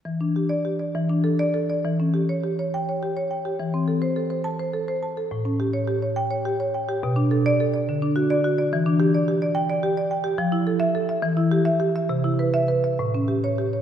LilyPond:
\new Staff \with { instrumentName = "Marimba" } { \time 6/8 \key e \dorian \tempo 4. = 70 << { r8. d''8 r4 d''8 r16 | r4. g''8 r4 | r4. a''8 r4 | r4. g''8 r4 |
r8. d''8 r4 d''8 r16 | r4. g''8 r4 | r8. e''8 r4 e''8 r16 | r8. e''8 r4 cis''8 r16 | } \\ { e16 d'16 g'8 g'16 d''16 e16 d'16 a'8 a'16 d''16 | e16 cis'16 g'16 cis''16 g'16 cis''8 cis''16 g'16 cis''16 g''16 g'16 | e16 c'16 a'16 c''16 a'16 c''8 c''16 a'16 c''16 a''16 a'16 | a,16 cis'16 g'16 cis''16 g'16 cis''8 cis''16 g'16 cis''16 g''16 g'16 |
b,16 d'16 a'8 a'16 d''16 d16 d'16 fis'8 fis'16 d''16 | e16 d'16 g'16 d''16 g'16 d''8 d''16 g'16 d''16 g''16 g'16 | f16 e'16 a'8 a'16 e''16 e16 e'16 g'8 g'16 e''16 | c16 e'16 b'8 b'16 e''16 a,16 cis'16 g'8 g'16 cis''16 | } >> }